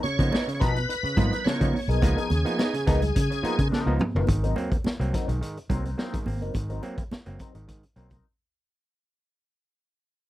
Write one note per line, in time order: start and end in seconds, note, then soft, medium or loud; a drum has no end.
0.03 0.21 C#3 medium
0.03 0.53 C#5 loud
0.03 muted clean electric guitar stroke medium
0.03 muted fingered electric bass stroke soft
0.03 closed hi-hat medium
0.03 muted conga medium
0.19 0.30 C#3 loud
0.19 0.34 F3 medium
0.19 0.34 A#3 medium
0.19 0.30 B3 medium
0.19 0.31 D#4 medium
0.19 muted clean electric guitar stroke medium
0.19 kick medium
0.19 closed hi-hat medium
0.32 0.49 B3 medium
0.32 0.49 D#4 medium
0.32 snare loud
0.32 high conga medium
0.46 0.62 C#3 medium
0.46 muted clean electric guitar stroke soft
0.46 closed hi-hat medium
0.54 0.61 C#5 medium
0.59 0.85 B2 medium
0.59 0.79 F3 medium
0.59 0.75 B3 medium
0.59 0.77 B3 medium
0.59 0.74 D#4 loud
0.59 0.77 D#4 medium
0.59 0.74 A#4 loud
0.59 1.48 B4 loud
0.59 kick loud
0.59 closed hi-hat medium
0.75 muted clean electric guitar stroke soft
0.75 closed hi-hat medium
0.88 0.95 B3 soft
0.88 0.95 D#4 medium
0.88 muted clean electric guitar stroke soft
0.88 closed hi-hat loud
1.03 1.19 C#3 medium
1.03 muted fingered electric bass stroke soft
1.03 muted clean electric guitar stroke soft
1.03 closed hi-hat medium
1.16 1.30 G#2 loud
1.16 1.32 F3 medium
1.16 1.34 F3 medium
1.16 1.34 A#3 medium
1.16 1.31 B3 medium
1.16 1.34 B3 medium
1.16 1.34 D#4 medium
1.16 1.31 D#4 medium
1.16 1.30 A#4 medium
1.16 kick medium
1.16 closed hi-hat medium
1.16 low conga loud
1.32 1.44 F3 soft
1.32 1.44 B3 medium
1.32 1.45 D#4 medium
1.32 1.45 A#4 medium
1.32 closed hi-hat medium
1.44 1.62 C#3 medium
1.44 1.66 F3 medium
1.44 1.66 B3 medium
1.44 1.66 D#4 medium
1.44 1.66 A#4 medium
1.44 1.90 C#5 medium
1.44 snare loud
1.44 high conga medium
1.60 1.72 C#3 medium
1.60 1.76 F3 medium
1.60 1.76 A#3 medium
1.60 1.73 B3 medium
1.60 1.73 D#4 medium
1.60 kick loud
1.60 closed hi-hat medium
1.73 1.80 B3 soft
1.73 1.80 D#4 soft
1.73 muted clean electric guitar stroke soft
1.73 open hi-hat medium
1.73 high conga medium
1.88 1.99 B1 medium
1.88 2.01 F3 medium
1.88 2.01 B3 medium
1.88 2.02 D#4 medium
1.88 3.68 G#4 medium
1.88 2.02 A#4 medium
1.88 closed hi-hat medium
2.02 2.15 C#2 loud
2.02 2.19 F3 medium
2.02 2.19 A#3 medium
2.02 2.19 B3 medium
2.02 2.19 D#4 loud
2.02 muted clean electric guitar stroke soft
2.02 kick loud
2.02 closed hi-hat medium
2.02 muted conga medium
2.16 2.29 F3 medium
2.16 2.30 B3 medium
2.16 2.30 D#4 medium
2.16 2.30 A#4 medium
2.16 closed hi-hat medium
2.30 2.43 D#2 medium
2.30 2.47 C#3 medium
2.30 closed hi-hat medium
2.30 muted conga medium
2.45 2.60 F3 medium
2.45 2.60 A#3 medium
2.45 2.57 B3 medium
2.45 2.57 D#4 medium
2.45 muted clean electric guitar stroke medium
2.45 closed hi-hat medium
2.58 2.75 B3 medium
2.58 2.75 D#4 medium
2.58 snare loud
2.58 high conga medium
2.73 2.89 C#3 medium
2.73 muted clean electric guitar stroke soft
2.73 closed hi-hat medium
2.86 3.11 C#2 medium
2.86 3.06 F3 medium
2.86 3.03 B3 medium
2.86 3.02 B3 medium
2.86 3.04 D#4 medium
2.86 3.02 D#4 loud
2.86 3.01 A#4 loud
2.86 kick loud
2.86 snare soft
2.86 closed hi-hat medium
2.86 muted conga soft
3.02 muted clean electric guitar stroke soft
3.02 closed hi-hat medium
3.02 low conga medium
3.15 3.28 C#3 loud
3.15 3.21 B3 soft
3.15 3.21 D#4 soft
3.15 muted clean electric guitar stroke soft
3.15 kick medium
3.15 closed hi-hat loud
3.30 3.45 C#3 medium
3.30 muted clean electric guitar stroke medium
3.30 closed hi-hat medium
3.43 3.60 F3 medium
3.43 3.59 F3 medium
3.43 3.60 A#3 medium
3.43 3.60 B3 medium
3.43 3.58 B3 medium
3.43 3.60 D#4 medium
3.43 3.58 D#4 medium
3.43 3.57 A#4 medium
3.43 muted fingered electric bass stroke soft
3.43 closed hi-hat medium
3.59 3.70 C#3 loud
3.59 3.71 F3 medium
3.59 3.71 B3 medium
3.59 3.72 D#4 medium
3.59 3.72 A#4 medium
3.59 kick medium
3.59 closed hi-hat medium
3.71 3.88 C#3 medium
3.71 3.92 F3 medium
3.71 3.93 B3 medium
3.71 3.93 D#4 medium
3.71 3.93 A#4 medium
3.71 muted fingered electric bass stroke soft
3.71 snare medium
3.71 high conga medium
3.86 3.98 C#2 medium
3.86 4.02 F3 medium
3.86 4.02 A#3 medium
3.86 3.99 B3 medium
3.86 3.99 D#4 medium
3.99 4.06 B3 soft
3.99 4.06 D#4 soft
3.99 muted clean electric guitar stroke soft
3.99 mid tom medium
3.99 high conga medium
4.15 4.26 F#1 medium
4.15 4.29 F3 medium
4.15 4.29 B3 medium
4.15 4.28 D#4 medium
4.15 4.29 A#4 medium
4.15 floor tom loud
4.27 4.52 G#1 loud
4.27 4.45 G#2 medium
4.27 4.45 D#3 medium
4.27 muted clean electric guitar stroke soft
4.27 kick loud
4.27 closed hi-hat medium
4.27 muted conga medium
4.43 4.56 F#3 medium
4.43 4.56 C4 medium
4.43 4.56 D#4 medium
4.43 4.57 A#4 medium
4.43 closed hi-hat medium
4.56 4.73 F#3 medium
4.56 4.70 A#3 medium
4.56 4.70 C4 loud
4.56 closed hi-hat medium
4.56 muted conga medium
4.71 4.77 A#3 soft
4.71 4.77 C4 soft
4.71 muted fingered electric bass stroke soft
4.71 muted clean electric guitar stroke medium
4.71 kick medium
4.71 closed hi-hat soft
4.84 muted clean electric guitar stroke soft
4.84 muted fingered electric bass stroke medium
4.84 snare loud
4.84 high conga medium
5.00 5.11 C2 medium
5.00 5.15 F#3 medium
5.00 5.15 A#3 medium
5.00 5.15 C4 medium
5.00 muted clean electric guitar stroke soft
5.00 closed hi-hat medium
5.13 5.32 F#3 medium
5.13 5.29 C4 medium
5.13 5.28 D#4 medium
5.13 5.28 A#4 medium
5.13 kick loud
5.13 snare soft
5.13 closed hi-hat medium
5.28 5.39 B1 medium
5.28 5.40 G#2 medium
5.28 5.40 D#3 medium
5.28 muted clean electric guitar stroke soft
5.28 closed hi-hat medium
5.41 5.58 G#2 medium
5.41 5.58 D#3 medium
5.41 muted clean electric guitar stroke soft
5.41 closed hi-hat loud
5.57 muted clean electric guitar stroke soft
5.57 closed hi-hat soft
5.70 5.94 C2 medium
5.70 5.86 F#3 medium
5.70 5.85 F#3 medium
5.70 5.84 A#3 medium
5.70 5.84 C4 medium
5.70 5.85 C4 medium
5.70 5.85 D#4 medium
5.70 5.85 A#4 medium
5.70 kick medium
5.70 closed hi-hat medium
5.70 low conga medium
5.85 5.97 F#3 medium
5.85 5.90 A#3 soft
5.85 5.90 C4 soft
5.85 5.98 C4 medium
5.85 5.98 D#4 medium
5.85 5.99 A#4 medium
5.85 closed hi-hat medium
5.98 6.17 F#3 medium
5.98 6.14 A#3 medium
5.98 6.15 C4 medium
5.98 6.17 C4 medium
5.98 6.18 D#4 medium
5.98 6.18 A#4 medium
5.98 snare loud
5.98 high conga medium
6.13 6.28 G#2 medium
6.13 6.28 D#3 medium
6.13 kick loud
6.13 closed hi-hat medium
6.26 6.41 G#1 loud
6.26 6.43 A#3 medium
6.26 6.43 C4 medium
6.26 muted clean electric guitar stroke soft
6.26 open hi-hat medium
6.26 high conga medium
6.41 6.53 F#1 medium
6.41 6.53 F#3 medium
6.41 6.54 C4 medium
6.41 6.54 D#4 medium
6.41 6.55 A#4 medium
6.41 closed hi-hat medium
6.54 6.78 G#1 loud
6.54 6.71 G#2 medium
6.54 6.71 D#3 medium
6.54 muted clean electric guitar stroke soft
6.54 kick loud
6.54 closed hi-hat medium
6.54 muted conga medium
6.70 6.82 F#3 medium
6.70 6.83 C4 medium
6.70 6.83 D#4 medium
6.70 6.83 A#4 medium
6.70 closed hi-hat medium
6.83 6.99 F#3 medium
6.83 6.97 A#3 medium
6.83 6.97 C4 loud
6.83 closed hi-hat medium
6.83 muted conga medium
6.98 7.03 A#3 soft
6.98 7.03 C4 soft
6.98 muted fingered electric bass stroke soft
6.98 muted clean electric guitar stroke soft
6.98 kick medium
6.98 closed hi-hat soft
7.11 muted fingered electric bass stroke soft
7.11 muted clean electric guitar stroke soft
7.11 snare loud
7.11 high conga medium
7.26 7.38 F#1 medium
7.26 7.41 F#3 medium
7.26 7.41 A#3 medium
7.26 7.42 C4 medium
7.26 muted clean electric guitar stroke soft
7.26 closed hi-hat medium
7.39 7.58 F#3 medium
7.39 7.55 C4 medium
7.39 7.55 D#4 medium
7.39 7.54 A#4 medium
7.39 kick medium
7.39 closed hi-hat medium
7.55 7.66 G#1 medium
7.55 7.66 G#2 medium
7.55 7.67 D#3 medium
7.55 muted clean electric guitar stroke soft
7.55 closed hi-hat medium
7.68 7.84 G#2 medium
7.68 7.84 D#3 medium
7.68 muted clean electric guitar stroke soft
7.68 kick medium
7.68 closed hi-hat loud
7.83 muted clean electric guitar stroke soft
7.83 closed hi-hat medium
7.96 8.20 B1 medium
7.96 8.13 F#3 medium
7.96 8.11 F#3 medium
7.96 8.10 A#3 medium
7.96 8.10 C4 medium
7.96 8.11 C4 medium
7.96 8.10 D#4 medium
7.96 8.10 A#4 medium
7.96 closed hi-hat medium
8.10 8.25 F#3 medium
8.10 8.16 A#3 soft
8.10 8.16 C4 soft
8.10 8.25 C4 medium
8.10 8.25 D#4 medium
8.10 8.24 A#4 medium
8.10 kick medium
8.10 closed hi-hat medium